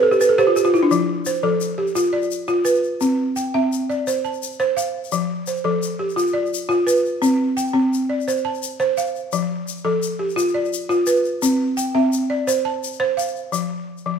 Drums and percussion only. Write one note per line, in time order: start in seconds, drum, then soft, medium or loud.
0.12 shaker soft
0.21 shaker medium
0.39 shaker soft
0.56 shaker medium
0.75 shaker soft
0.91 shaker medium
1.26 shaker medium
1.61 shaker medium
1.87 shaker soft
1.96 shaker medium
2.05 shaker soft
2.22 shaker soft
2.31 shaker medium
2.48 shaker soft
2.65 shaker medium
2.75 shaker soft
2.84 shaker soft
3.01 shaker medium
3.36 shaker medium
3.73 shaker medium
3.90 shaker soft
4.07 shaker medium
4.25 shaker soft
4.33 shaker soft
4.43 shaker medium
4.52 shaker soft
4.60 shaker soft
4.78 shaker medium
5.04 shaker soft
5.12 shaker medium
5.47 shaker medium
5.57 shaker soft
5.83 shaker medium
6.09 shaker soft
6.18 shaker medium
6.46 shaker soft
6.54 shaker medium
6.71 shaker soft
6.88 shaker medium
7.05 shaker soft
7.23 shaker medium
7.58 shaker medium
7.67 shaker soft
7.93 shaker soft
8.21 shaker soft
8.28 shaker medium
8.37 shaker soft
8.54 shaker soft
8.63 shaker medium
8.80 shaker soft
8.98 shaker medium
9.06 shaker soft
9.16 shaker soft
9.32 shaker medium
9.68 shaker medium
9.77 shaker soft
10.03 shaker medium
10.30 shaker soft
10.38 shaker medium
10.48 shaker soft
10.65 shaker soft
10.73 shaker medium
10.91 shaker soft
11.07 shaker medium
11.25 shaker soft
11.43 shaker medium
11.78 shaker medium
12.13 shaker medium
12.48 shaker medium
12.84 shaker medium
12.93 shaker soft
13.19 shaker medium
13.36 shaker soft
13.53 shaker medium
13.98 shaker soft